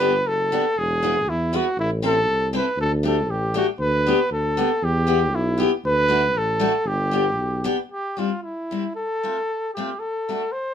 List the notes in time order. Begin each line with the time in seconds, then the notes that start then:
Already playing: G1 B4
0.00 B3 D4 G4
0.25 F#1 A4
0.52 B3 D4 G4
0.77 E1 G#4
1.03 B3 E4 G#4
1.27 E2 E4
1.53 B3 E4 F#4 G#4
1.77 A1 E4
2.02 C4 E4 A4
2.27 C2
2.53 C4 E4 A4 B4
2.77 D2 A4
3.03 A3 D4 G4 A4
3.27 A1 G4
3.54 A3 D4 F#4 G4
3.78 D2 B4
4.07 B3 D4 G4
4.30 D2 A4
4.57 B3 D4 G4
4.82 E2 G4
5.07 B3 E4 G4
5.32 B1 E4
5.58 B3 E4 G4
5.84 D2 B4
6.08 A3 D4 F#4
6.34 A1 A4
6.60 A3 D4 F#4
6.85 G1 G4
7.11 B3 D4 G4
7.37 B1
7.64 B3 D4 G4
7.91 G4
8.17 G3 C4 E4 F4
8.43 E4
8.71 G3 C4 E4
8.96 A4
9.23 A3 C4 F4
9.74 A3 G4
9.78 C4 F4
9.99 A4
10.29 A3 D4 F#4
10.52 C5